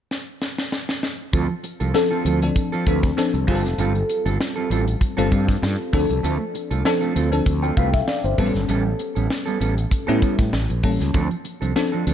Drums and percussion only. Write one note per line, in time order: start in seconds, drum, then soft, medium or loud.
0.11 snare medium
0.42 snare medium
0.58 snare medium
0.72 snare medium
0.89 snare medium
1.03 snare medium
1.33 kick loud
1.33 closed hi-hat medium
1.64 closed hi-hat medium
1.80 closed hi-hat medium
1.95 snare loud
2.26 closed hi-hat medium
2.42 closed hi-hat medium
2.56 kick medium
2.56 closed hi-hat medium
2.73 closed hi-hat soft
2.87 kick medium
2.87 closed hi-hat medium
3.03 kick loud
3.03 snare soft
3.03 closed hi-hat medium
3.18 snare loud
3.35 closed hi-hat soft
3.48 kick medium
3.48 open hi-hat medium
3.65 snare soft
3.65 closed hi-hat medium
3.78 closed hi-hat medium
3.95 closed hi-hat soft
4.09 closed hi-hat medium
4.26 closed hi-hat medium
4.41 snare loud
4.71 closed hi-hat medium
4.88 closed hi-hat medium
5.01 kick medium
5.01 closed hi-hat medium
5.18 closed hi-hat soft
5.32 kick medium
5.32 closed hi-hat medium
5.48 kick loud
5.48 snare soft
5.48 closed hi-hat medium
5.63 snare loud
5.93 kick loud
5.93 snare soft
5.93 open hi-hat medium
6.10 closed hi-hat soft
6.24 closed hi-hat medium
6.55 closed hi-hat medium
6.71 closed hi-hat medium
6.85 snare loud
7.02 closed hi-hat soft
7.16 closed hi-hat medium
7.32 closed hi-hat medium
7.46 kick medium
7.46 closed hi-hat medium
7.64 closed hi-hat soft
7.77 kick medium
7.77 closed hi-hat medium
7.94 kick loud
7.94 snare soft
7.94 closed hi-hat medium
8.08 snare loud
8.25 closed hi-hat soft
8.38 kick loud
8.38 open hi-hat medium
8.55 snare soft
8.55 closed hi-hat soft
8.69 closed hi-hat medium
8.99 closed hi-hat medium
9.16 closed hi-hat medium
9.30 snare loud
9.47 closed hi-hat soft
9.61 closed hi-hat medium
9.78 closed hi-hat medium
9.91 kick medium
9.91 closed hi-hat medium
10.09 closed hi-hat soft
10.22 kick medium
10.22 closed hi-hat medium
10.39 kick loud
10.39 snare soft
10.39 closed hi-hat medium
10.53 snare loud
10.70 closed hi-hat soft
10.83 kick medium
10.83 open hi-hat medium
11.01 snare soft
11.01 closed hi-hat soft
11.14 kick loud
11.14 closed hi-hat medium
11.31 closed hi-hat soft
11.45 closed hi-hat medium
11.62 closed hi-hat medium
11.76 snare loud
12.07 closed hi-hat medium